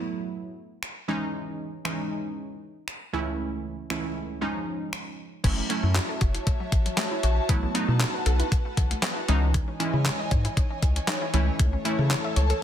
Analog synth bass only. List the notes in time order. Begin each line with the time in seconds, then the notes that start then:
5.44 F#1
5.83 F#2
6.21 F#1
6.72 A1
7.24 A#1
7.49 B1
7.88 B2
8.26 B1
8.77 B1
9.29 C#2
9.94 C#3
10.32 G#2
10.82 C#2
11.34 C#2
11.59 C#2
11.99 C#3
12.36 C#2